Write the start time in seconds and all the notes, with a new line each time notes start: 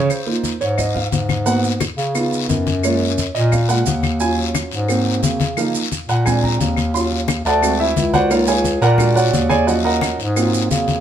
Already playing: C#3
0.09 C5, high conga, long guiro, claves, maracas
0.26 A#3 D#4 F4, high conga
0.44 high conga, short guiro, maracas
0.61 G#2 C#5, high conga, short guiro, maracas
0.78 D#5, high conga, low conga, long guiro, claves, maracas
0.95 F5, high conga, low conga
1.11 G#2, high conga, short guiro, maracas
1.29 high conga, short guiro, claves, maracas
1.45 A#3 B3 F#4 F#5, high conga, long guiro, maracas
1.64 high conga, maracas
1.80 high conga, short guiro, claves, maracas
1.97 C#3, high conga, short guiro, maracas
2.14 B3 D#4 F4, high conga, long guiro, claves, maracas
2.33 high conga, maracas
2.48 F#2, high conga, short guiro, maracas
2.67 high conga, short guiro, maracas
2.83 G#3 A#3 F4 C#5, high conga, long guiro, claves, maracas
3.01 high conga
3.18 high conga, short guiro, maracas
3.34 A#2 D#5, high conga, short guiro, maracas
3.52 F5, high conga, low conga, long guiro, claves, maracas
3.68 G#3 A#3 F4 F#5, high conga, maracas
3.85 D#2, high conga, short guiro, maracas
4.03 high conga, short guiro, claves, maracas
4.20 F#3 C#4 F4 G#5, long guiro, maracas
4.38 high conga
4.55 high conga, short guiro, claves, maracas
4.71 G#2, high conga, short guiro, maracas
4.88 F#3 A#3 C4, high conga, long guiro, claves, maracas
5.06 high conga
5.22 C#3, high conga, short guiro, maracas
5.40 high conga, short guiro, maracas
5.57 F3 A#3 D#4 F5, high conga, long guiro, claves, maracas
5.75 high conga, maracas
5.91 high conga, short guiro, maracas
6.08 A#2 F#5, high conga, short guiro, maracas
6.25 G#3 C4 D4 G#5, high conga, low conga, long guiro, claves, maracas
6.43 A#5, high conga, low conga
6.60 D#2, high conga, short guiro, maracas
6.77 high conga, short guiro, claves, maracas
6.94 F#3 C#4 F4 C6, long guiro, maracas
7.12 high conga
7.28 high conga, short guiro, claves, maracas
7.45 D2 A4 D5 F#5 A5, high conga, short guiro, maracas
7.62 G#3 C4 F#4, high conga, long guiro, claves, maracas
7.79 E4 E5, high conga
7.96 C#2, high conga, short guiro, maracas
8.14 F#4 C5 D5 F#5, high conga, short guiro, maracas
8.30 A#3 D#4 F4 A#4 C#5 F5, high conga, long guiro, claves, maracas
8.47 G#4 C#5 F5 G#5, high conga, maracas
8.64 high conga, short guiro, maracas
8.81 A#2 A#4 D5 F#5 A#5, high conga, short guiro, maracas
8.98 G#3 D4 F#4, high conga, low conga, long guiro, claves, maracas
9.15 F#4 C#5 D5 F#5, high conga, maracas
9.33 D#2, high conga, short guiro, maracas
9.49 G#4 C#5 D5 G#5, high conga, short guiro, claves, maracas
9.66 F3 F#3 C#4 F#4 C#5 D#5 F#5, high conga, long guiro, maracas
9.84 A#4 D#5 F#5 A#5, high conga
10.01 high conga, short guiro, claves, maracas
10.19 G#2, high conga, short guiro, maracas
10.36 F#3 A#3 C4 F4, high conga, long guiro, claves, maracas
10.54 high conga, maracas
10.70 C#3, high conga, short guiro, maracas
10.88 high conga, short guiro, maracas